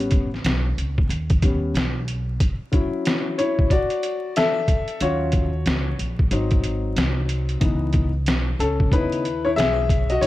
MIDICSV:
0, 0, Header, 1, 4, 480
1, 0, Start_track
1, 0, Key_signature, 4, "minor"
1, 0, Tempo, 652174
1, 1766, Time_signature, 4, 2, 24, 8
1, 7557, End_track
2, 0, Start_track
2, 0, Title_t, "Upright piano"
2, 0, Program_c, 0, 0
2, 0, Note_on_c, 0, 55, 56
2, 0, Note_on_c, 0, 59, 55
2, 0, Note_on_c, 0, 61, 64
2, 192, Note_off_c, 0, 55, 0
2, 194, Note_off_c, 0, 59, 0
2, 197, Note_off_c, 0, 61, 0
2, 1049, Note_on_c, 0, 55, 46
2, 1052, Note_on_c, 0, 59, 40
2, 1054, Note_on_c, 0, 61, 54
2, 1264, Note_off_c, 0, 55, 0
2, 1265, Note_off_c, 0, 59, 0
2, 1267, Note_off_c, 0, 61, 0
2, 1999, Note_on_c, 0, 54, 59
2, 2007, Note_on_c, 0, 61, 55
2, 2011, Note_on_c, 0, 64, 60
2, 2486, Note_off_c, 0, 64, 0
2, 2489, Note_on_c, 0, 73, 80
2, 2497, Note_on_c, 0, 64, 68
2, 2693, Note_off_c, 0, 54, 0
2, 2697, Note_off_c, 0, 61, 0
2, 2715, Note_off_c, 0, 64, 0
2, 2730, Note_on_c, 0, 74, 87
2, 2735, Note_off_c, 0, 73, 0
2, 2740, Note_on_c, 0, 66, 72
2, 3184, Note_off_c, 0, 66, 0
2, 3214, Note_on_c, 0, 76, 105
2, 3221, Note_on_c, 0, 69, 83
2, 3223, Note_off_c, 0, 74, 0
2, 3664, Note_off_c, 0, 69, 0
2, 3687, Note_on_c, 0, 54, 56
2, 3694, Note_on_c, 0, 73, 86
2, 3695, Note_on_c, 0, 61, 48
2, 3696, Note_on_c, 0, 66, 72
2, 3697, Note_on_c, 0, 65, 62
2, 3705, Note_off_c, 0, 76, 0
2, 4030, Note_off_c, 0, 54, 0
2, 4035, Note_off_c, 0, 61, 0
2, 4036, Note_off_c, 0, 65, 0
2, 4381, Note_off_c, 0, 73, 0
2, 4382, Note_off_c, 0, 66, 0
2, 4644, Note_on_c, 0, 54, 55
2, 4650, Note_on_c, 0, 60, 48
2, 4655, Note_on_c, 0, 63, 59
2, 5576, Note_off_c, 0, 54, 0
2, 5579, Note_off_c, 0, 60, 0
2, 5582, Note_off_c, 0, 63, 0
2, 5597, Note_on_c, 0, 52, 58
2, 5603, Note_on_c, 0, 59, 52
2, 5606, Note_on_c, 0, 63, 62
2, 5945, Note_off_c, 0, 52, 0
2, 5948, Note_off_c, 0, 59, 0
2, 5950, Note_off_c, 0, 63, 0
2, 6329, Note_on_c, 0, 69, 78
2, 6336, Note_on_c, 0, 61, 59
2, 6555, Note_off_c, 0, 61, 0
2, 6570, Note_on_c, 0, 49, 50
2, 6571, Note_on_c, 0, 71, 95
2, 6573, Note_on_c, 0, 59, 46
2, 6575, Note_off_c, 0, 69, 0
2, 6575, Note_on_c, 0, 63, 53
2, 6582, Note_on_c, 0, 64, 70
2, 6785, Note_off_c, 0, 49, 0
2, 6786, Note_off_c, 0, 59, 0
2, 6787, Note_off_c, 0, 63, 0
2, 6940, Note_off_c, 0, 64, 0
2, 6952, Note_on_c, 0, 73, 89
2, 6962, Note_on_c, 0, 64, 73
2, 6972, Note_off_c, 0, 71, 0
2, 6989, Note_off_c, 0, 73, 0
2, 6999, Note_off_c, 0, 64, 0
2, 7038, Note_on_c, 0, 76, 112
2, 7046, Note_on_c, 0, 68, 81
2, 7411, Note_off_c, 0, 68, 0
2, 7433, Note_on_c, 0, 75, 90
2, 7444, Note_on_c, 0, 66, 76
2, 7446, Note_off_c, 0, 76, 0
2, 7517, Note_on_c, 0, 73, 100
2, 7523, Note_off_c, 0, 66, 0
2, 7526, Note_off_c, 0, 75, 0
2, 7531, Note_on_c, 0, 64, 69
2, 7557, Note_off_c, 0, 64, 0
2, 7557, Note_off_c, 0, 73, 0
2, 7557, End_track
3, 0, Start_track
3, 0, Title_t, "Upright bass"
3, 0, Program_c, 1, 32
3, 0, Note_on_c, 1, 33, 92
3, 302, Note_off_c, 1, 33, 0
3, 328, Note_on_c, 1, 35, 88
3, 555, Note_off_c, 1, 35, 0
3, 571, Note_on_c, 1, 37, 80
3, 797, Note_off_c, 1, 37, 0
3, 804, Note_on_c, 1, 39, 91
3, 1261, Note_off_c, 1, 39, 0
3, 1283, Note_on_c, 1, 35, 92
3, 1741, Note_off_c, 1, 35, 0
3, 3687, Note_on_c, 1, 39, 103
3, 4143, Note_off_c, 1, 39, 0
3, 4166, Note_on_c, 1, 37, 95
3, 4394, Note_off_c, 1, 37, 0
3, 4408, Note_on_c, 1, 34, 82
3, 4635, Note_off_c, 1, 34, 0
3, 4643, Note_on_c, 1, 32, 96
3, 5101, Note_off_c, 1, 32, 0
3, 5124, Note_on_c, 1, 36, 92
3, 5581, Note_off_c, 1, 36, 0
3, 5603, Note_on_c, 1, 37, 102
3, 6086, Note_off_c, 1, 37, 0
3, 6086, Note_on_c, 1, 35, 92
3, 6314, Note_off_c, 1, 35, 0
3, 6324, Note_on_c, 1, 37, 81
3, 6553, Note_off_c, 1, 37, 0
3, 6562, Note_on_c, 1, 39, 89
3, 7020, Note_off_c, 1, 39, 0
3, 7045, Note_on_c, 1, 35, 94
3, 7502, Note_off_c, 1, 35, 0
3, 7522, Note_on_c, 1, 37, 98
3, 7557, Note_off_c, 1, 37, 0
3, 7557, End_track
4, 0, Start_track
4, 0, Title_t, "Drums"
4, 2, Note_on_c, 9, 42, 42
4, 75, Note_off_c, 9, 42, 0
4, 78, Note_on_c, 9, 42, 65
4, 86, Note_on_c, 9, 36, 83
4, 152, Note_off_c, 9, 42, 0
4, 160, Note_off_c, 9, 36, 0
4, 251, Note_on_c, 9, 38, 30
4, 324, Note_off_c, 9, 38, 0
4, 327, Note_on_c, 9, 42, 85
4, 339, Note_on_c, 9, 38, 93
4, 401, Note_off_c, 9, 42, 0
4, 412, Note_off_c, 9, 38, 0
4, 575, Note_on_c, 9, 42, 74
4, 649, Note_off_c, 9, 42, 0
4, 721, Note_on_c, 9, 36, 78
4, 795, Note_off_c, 9, 36, 0
4, 812, Note_on_c, 9, 42, 76
4, 886, Note_off_c, 9, 42, 0
4, 955, Note_on_c, 9, 42, 50
4, 959, Note_on_c, 9, 36, 97
4, 1029, Note_off_c, 9, 42, 0
4, 1032, Note_off_c, 9, 36, 0
4, 1048, Note_on_c, 9, 42, 78
4, 1049, Note_on_c, 9, 36, 91
4, 1122, Note_off_c, 9, 42, 0
4, 1123, Note_off_c, 9, 36, 0
4, 1291, Note_on_c, 9, 42, 83
4, 1303, Note_on_c, 9, 38, 117
4, 1365, Note_off_c, 9, 42, 0
4, 1376, Note_off_c, 9, 38, 0
4, 1530, Note_on_c, 9, 42, 71
4, 1604, Note_off_c, 9, 42, 0
4, 1768, Note_on_c, 9, 36, 107
4, 1768, Note_on_c, 9, 42, 103
4, 1842, Note_off_c, 9, 36, 0
4, 1842, Note_off_c, 9, 42, 0
4, 2006, Note_on_c, 9, 42, 61
4, 2008, Note_on_c, 9, 36, 80
4, 2080, Note_off_c, 9, 42, 0
4, 2081, Note_off_c, 9, 36, 0
4, 2248, Note_on_c, 9, 42, 82
4, 2260, Note_on_c, 9, 38, 100
4, 2322, Note_off_c, 9, 42, 0
4, 2333, Note_off_c, 9, 38, 0
4, 2493, Note_on_c, 9, 42, 74
4, 2567, Note_off_c, 9, 42, 0
4, 2640, Note_on_c, 9, 36, 78
4, 2714, Note_off_c, 9, 36, 0
4, 2725, Note_on_c, 9, 36, 81
4, 2729, Note_on_c, 9, 42, 86
4, 2799, Note_off_c, 9, 36, 0
4, 2802, Note_off_c, 9, 42, 0
4, 2872, Note_on_c, 9, 42, 49
4, 2945, Note_off_c, 9, 42, 0
4, 2967, Note_on_c, 9, 42, 82
4, 3041, Note_off_c, 9, 42, 0
4, 3209, Note_on_c, 9, 42, 81
4, 3220, Note_on_c, 9, 38, 117
4, 3283, Note_off_c, 9, 42, 0
4, 3294, Note_off_c, 9, 38, 0
4, 3443, Note_on_c, 9, 36, 84
4, 3444, Note_on_c, 9, 42, 71
4, 3517, Note_off_c, 9, 36, 0
4, 3518, Note_off_c, 9, 42, 0
4, 3589, Note_on_c, 9, 42, 53
4, 3663, Note_off_c, 9, 42, 0
4, 3684, Note_on_c, 9, 42, 104
4, 3757, Note_off_c, 9, 42, 0
4, 3915, Note_on_c, 9, 42, 67
4, 3924, Note_on_c, 9, 36, 87
4, 3989, Note_off_c, 9, 42, 0
4, 3998, Note_off_c, 9, 36, 0
4, 4164, Note_on_c, 9, 42, 80
4, 4176, Note_on_c, 9, 38, 102
4, 4238, Note_off_c, 9, 42, 0
4, 4249, Note_off_c, 9, 38, 0
4, 4411, Note_on_c, 9, 42, 74
4, 4485, Note_off_c, 9, 42, 0
4, 4557, Note_on_c, 9, 36, 76
4, 4630, Note_off_c, 9, 36, 0
4, 4644, Note_on_c, 9, 42, 84
4, 4718, Note_off_c, 9, 42, 0
4, 4789, Note_on_c, 9, 42, 47
4, 4795, Note_on_c, 9, 36, 97
4, 4862, Note_off_c, 9, 42, 0
4, 4869, Note_off_c, 9, 36, 0
4, 4884, Note_on_c, 9, 42, 76
4, 4957, Note_off_c, 9, 42, 0
4, 5126, Note_on_c, 9, 42, 89
4, 5137, Note_on_c, 9, 38, 111
4, 5199, Note_off_c, 9, 42, 0
4, 5211, Note_off_c, 9, 38, 0
4, 5365, Note_on_c, 9, 42, 73
4, 5438, Note_off_c, 9, 42, 0
4, 5511, Note_on_c, 9, 42, 49
4, 5585, Note_off_c, 9, 42, 0
4, 5601, Note_on_c, 9, 42, 99
4, 5603, Note_on_c, 9, 36, 110
4, 5675, Note_off_c, 9, 42, 0
4, 5677, Note_off_c, 9, 36, 0
4, 5833, Note_on_c, 9, 42, 60
4, 5842, Note_on_c, 9, 36, 89
4, 5907, Note_off_c, 9, 42, 0
4, 5916, Note_off_c, 9, 36, 0
4, 6081, Note_on_c, 9, 42, 85
4, 6093, Note_on_c, 9, 38, 100
4, 6155, Note_off_c, 9, 42, 0
4, 6167, Note_off_c, 9, 38, 0
4, 6332, Note_on_c, 9, 42, 74
4, 6405, Note_off_c, 9, 42, 0
4, 6476, Note_on_c, 9, 36, 80
4, 6550, Note_off_c, 9, 36, 0
4, 6563, Note_on_c, 9, 36, 84
4, 6570, Note_on_c, 9, 42, 79
4, 6636, Note_off_c, 9, 36, 0
4, 6644, Note_off_c, 9, 42, 0
4, 6715, Note_on_c, 9, 42, 51
4, 6789, Note_off_c, 9, 42, 0
4, 6809, Note_on_c, 9, 42, 69
4, 6883, Note_off_c, 9, 42, 0
4, 7053, Note_on_c, 9, 42, 87
4, 7064, Note_on_c, 9, 38, 120
4, 7127, Note_off_c, 9, 42, 0
4, 7138, Note_off_c, 9, 38, 0
4, 7282, Note_on_c, 9, 36, 92
4, 7287, Note_on_c, 9, 42, 75
4, 7356, Note_off_c, 9, 36, 0
4, 7360, Note_off_c, 9, 42, 0
4, 7431, Note_on_c, 9, 42, 51
4, 7505, Note_off_c, 9, 42, 0
4, 7526, Note_on_c, 9, 42, 97
4, 7557, Note_off_c, 9, 42, 0
4, 7557, End_track
0, 0, End_of_file